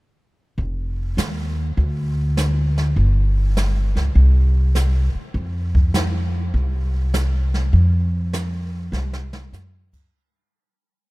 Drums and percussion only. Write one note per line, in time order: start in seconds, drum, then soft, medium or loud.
0.58 brush sweep soft
0.58 kick soft
1.18 snare medium
1.18 hi-hat pedal medium
1.78 brush sweep medium
1.78 kick soft
2.37 snare medium
2.37 hi-hat pedal medium
2.78 snare soft
2.97 brush sweep soft
2.97 kick soft
3.57 snare medium
3.57 hi-hat pedal medium
3.97 snare soft
4.16 brush sweep soft
4.16 kick soft
4.75 snare medium
4.75 hi-hat pedal medium
5.35 brush sweep soft
5.35 kick soft
5.75 kick medium
5.94 snare medium
5.94 hi-hat pedal medium
6.54 brush sweep soft
6.54 kick soft
7.14 snare medium
7.14 hi-hat pedal medium
7.54 snare soft
7.73 brush sweep soft
7.73 kick soft
8.33 snare medium
8.33 hi-hat pedal medium
8.93 snare soft
9.13 snare soft
9.33 snare medium
9.53 snare soft
9.53 hi-hat pedal medium
9.93 kick medium
9.93 crash medium